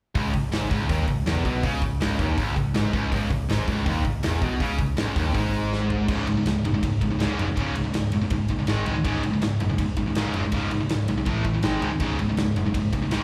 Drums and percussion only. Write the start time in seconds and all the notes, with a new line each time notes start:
0.15 kick, open hi-hat
0.34 kick, open hi-hat
0.52 snare, open hi-hat
0.71 kick, open hi-hat
0.89 kick, open hi-hat
1.08 kick, open hi-hat
1.26 snare, open hi-hat
1.37 snare
1.45 kick, open hi-hat
1.63 kick, open hi-hat
1.82 kick, open hi-hat
2.01 snare, open hi-hat
2.19 kick, snare, open hi-hat
2.38 kick, open hi-hat
2.56 kick, open hi-hat
2.75 snare, open hi-hat
2.93 kick, open hi-hat
3.12 kick, open hi-hat
3.30 kick, open hi-hat
3.50 snare, open hi-hat
3.68 kick, open hi-hat
3.86 kick, open hi-hat
4.05 kick, open hi-hat
4.23 snare, open hi-hat
4.42 kick, open hi-hat
4.60 kick, open hi-hat
4.78 kick, open hi-hat
4.97 snare, open hi-hat
5.16 kick, snare, open hi-hat
5.35 kick, open hi-hat
5.54 open hi-hat
5.73 snare
5.90 floor tom
6.08 kick, crash
6.27 ride
6.46 snare, ride
6.65 ride
6.83 kick, ride
7.01 kick, ride
7.20 snare, ride
7.39 ride
7.57 kick, ride
7.75 ride
7.94 snare, ride
8.12 ride
8.30 kick, ride
8.48 kick, ride
8.67 snare, ride
8.86 ride
9.05 kick, ride
9.23 ride
9.42 snare, ride
9.60 ride
9.78 kick, ride
9.97 kick, ride
10.15 snare, ride
10.34 ride
10.52 kick, ride
10.71 ride
10.89 snare, ride
11.08 ride
11.26 kick, ride
11.45 kick, ride
11.63 snare, ride
11.82 ride
12.00 kick, ride
12.19 ride
12.37 snare, ride
12.48 snare
12.56 ride
12.74 kick, ride
12.93 kick, ride
13.11 snare, ride